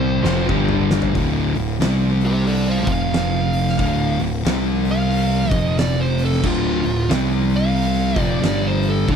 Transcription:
0.00 0.19 C2 loud
0.00 0.22 C3 loud
0.00 0.22 G3 loud
0.00 0.23 C4 loud
0.00 0.46 C5 medium
0.23 0.48 F1 loud
0.23 0.49 F2 medium
0.23 0.50 C3 loud
0.23 0.50 F3 medium
0.23 snare medium
0.49 1.11 G1 loud
0.49 1.14 G2 loud
0.49 1.14 D3 loud
0.49 1.15 G3 loud
0.49 kick medium
0.69 mid tom medium
0.91 snare medium
1.02 floor tom loud
1.14 1.52 D1 medium
1.14 1.53 D2 medium
1.14 1.54 A2 loud
1.14 1.54 D3 loud
1.14 kick loud
1.14 open hi-hat medium
1.55 1.79 D1 medium
1.55 1.76 D2 medium
1.55 1.76 A2 medium
1.55 open hi-hat medium
1.80 2.83 C2 loud
1.80 2.87 C3 loud
1.80 2.87 G3 loud
1.80 2.88 C4 loud
1.80 snare loud
1.80 open hi-hat medium
2.21 open hi-hat medium
2.25 2.47 G4 medium
2.25 2.46 C5 medium
2.47 2.67 A4 medium
2.47 2.68 D5 medium
2.47 open hi-hat medium
2.69 2.90 C5 medium
2.69 2.91 F5 medium
2.87 3.75 F1 loud
2.87 3.78 F2 medium
2.87 3.79 C3 loud
2.87 3.79 F3 loud
2.87 kick loud
2.87 open hi-hat medium
2.92 4.20 F5 loud
3.13 snare loud
3.13 open hi-hat medium
3.53 open hi-hat medium
3.68 snare soft
3.79 4.16 D1 medium
3.79 4.18 D2 loud
3.79 4.19 A2 medium
3.79 4.19 D3 loud
3.79 kick loud
3.79 open hi-hat medium
4.19 4.44 D1 medium
4.19 4.40 D2 medium
4.19 4.41 A2 medium
4.19 open hi-hat soft
4.45 5.48 C2 loud
4.45 5.51 C3 loud
4.45 5.51 G3 loud
4.45 5.52 C4 loud
4.45 snare loud
4.45 open hi-hat medium
4.85 open hi-hat medium
4.91 5.51 F5 loud
5.11 open hi-hat medium
5.51 6.40 F1 medium
5.51 6.42 F2 medium
5.51 6.43 C3 medium
5.51 6.43 F3 loud
5.51 5.76 D#5 loud
5.51 kick loud
5.51 open hi-hat medium
5.77 6.00 D5 loud
5.77 snare loud
5.77 open hi-hat medium
6.00 6.21 C5 medium
6.18 open hi-hat medium
6.25 6.45 A4 loud
6.32 snare soft
6.43 6.81 D1 medium
6.43 6.82 D2 loud
6.43 6.82 A2 loud
6.43 6.83 D3 loud
6.43 7.09 F4 loud
6.43 kick loud
6.43 crash loud
6.83 7.08 D1 medium
6.83 7.04 D2 medium
6.83 7.05 A2 medium
6.83 open hi-hat medium
7.09 8.13 C2 loud
7.09 8.15 C3 loud
7.09 8.15 G3 loud
7.09 8.15 C4 loud
7.09 snare loud
7.09 open hi-hat medium
7.50 open hi-hat medium
7.56 8.22 F5 loud
7.76 open hi-hat medium
8.16 8.40 F1 medium
8.16 8.41 F2 medium
8.16 8.41 C3 medium
8.16 8.41 F3 medium
8.16 kick loud
8.16 open hi-hat medium
8.22 8.41 D5 loud
8.41 9.04 G1 medium
8.41 9.07 G2 medium
8.41 9.07 D3 medium
8.41 9.08 G3 medium
8.41 snare loud
8.41 open hi-hat medium
8.46 8.65 D5 medium
8.67 8.87 C5 medium
8.83 open hi-hat soft
8.90 9.10 A4 loud
9.08 9.16 D1 medium
9.08 9.16 D2 loud
9.08 9.16 A2 loud
9.08 9.16 D3 loud
9.08 9.16 D4 loud
9.08 kick loud
9.08 open hi-hat medium

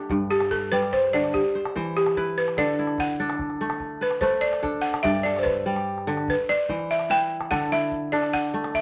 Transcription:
0.00 1.27 A3 medium
0.00 1.37 D4 medium
0.00 1.10 G4 medium
0.00 0.30 B4 medium
0.09 1.40 G2 medium
0.09 calabash thump medium
0.09 calabash click soft
0.30 0.52 G4 medium
0.30 1.62 A4 medium
0.41 calabash click soft
0.51 0.73 A4 medium
0.51 calabash thump medium
0.72 1.19 G3 medium
0.72 0.91 B4 medium
0.72 1.83 D5 medium
0.83 calabash click soft
0.93 1.02 C5 medium
0.93 calabash thump medium
1.04 calabash click soft
1.13 1.40 D3 medium
1.13 1.35 D5 loud
1.24 calabash click soft
1.34 1.53 G4 medium
1.34 calabash thump medium
1.55 1.76 C5 medium
1.66 calabash click soft
1.76 2.63 E3 medium
1.76 2.95 C5 medium
1.76 calabash thump medium
1.86 calabash click soft
1.97 2.39 G4 medium
2.07 calabash click soft
2.16 2.79 E4 medium
2.16 3.40 B4 medium
2.16 calabash thump medium
2.38 2.59 B4 medium
2.48 calabash click soft
2.57 4.92 D3 medium
2.57 3.19 A4 medium
2.57 3.00 D5 medium
2.57 calabash thump medium
2.57 calabash click soft
2.79 4.36 E4 medium
2.87 calabash click soft
2.98 3.38 F#5 medium
2.98 calabash thump medium
3.20 4.62 D4 medium
3.20 4.52 A4 medium
3.30 calabash click soft
3.39 calabash thump medium
3.50 calabash click soft
3.61 4.21 A3 medium
3.70 calabash click soft
3.80 calabash thump medium
4.01 4.21 B4 medium
4.01 4.23 B4 medium
4.11 calabash click soft
4.21 6.21 A3 medium
4.21 5.44 B4 medium
4.21 4.43 C5 medium
4.21 calabash thump medium
4.32 calabash click soft
4.41 4.84 D5 medium
4.53 calabash click medium
4.62 6.30 D4 medium
4.62 5.25 A4 medium
4.62 calabash thump medium
4.82 5.04 F#5 medium
4.94 calabash click medium
5.03 6.33 G2 medium
5.03 5.65 D5 medium
5.03 5.23 E5 medium
5.03 calabash thump medium
5.03 calabash click soft
5.23 6.57 A4 medium
5.23 5.37 D5 medium
5.37 5.46 C5 medium
5.37 calabash click medium
5.43 5.83 B4 medium
5.43 calabash thump medium
5.66 6.12 G3 medium
5.66 6.77 D5 medium
5.76 calabash click medium
5.98 calabash click soft
6.07 6.33 D3 medium
6.17 calabash click medium
6.28 6.50 B4 medium
6.28 calabash thump medium
6.49 6.69 C5 medium
6.49 6.91 D5 medium
6.69 7.56 E3 medium
6.69 7.88 C5 medium
6.69 calabash thump medium
6.79 calabash click soft
6.91 7.11 E5 medium
6.99 calabash click medium
7.10 7.71 E4 medium
7.10 8.33 B4 medium
7.10 7.53 G5 loud
7.41 calabash click medium
7.51 8.81 D3 medium
7.51 8.13 A4 medium
7.51 7.60 F#5 medium
7.51 calabash thump medium
7.61 calabash click soft
7.72 8.81 E4 medium
7.72 8.10 E5 loud
7.92 calabash thump medium
8.12 8.81 D4 medium
8.12 8.81 A4 medium
8.12 8.22 D5 medium
8.22 calabash click soft
8.33 8.76 F#5 medium
8.33 calabash thump medium
8.33 calabash click soft
8.54 8.81 A3 medium
8.64 calabash click soft
8.74 8.81 E5 medium
8.74 calabash thump medium
8.74 calabash click soft

